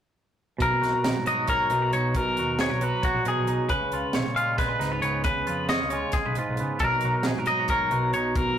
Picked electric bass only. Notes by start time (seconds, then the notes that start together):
0.61 B1
0.82 B1
1.05 A#1
1.17 G#2
1.71 B1
1.94 B1
2.38 D#2
2.71 B1
3.14 A#1
3.37 A#1
3.47 B1
3.69 C#2
3.92 C#2
4.15 B1
4.24 A#2
4.80 C#2
5.02 C#2
5.48 F2
5.83 C#2
6.26 B1
6.49 B1
6.60 C#3
6.81 B1
7.04 B1
7.27 A#1
7.36 G#2
7.92 B1
8.15 B1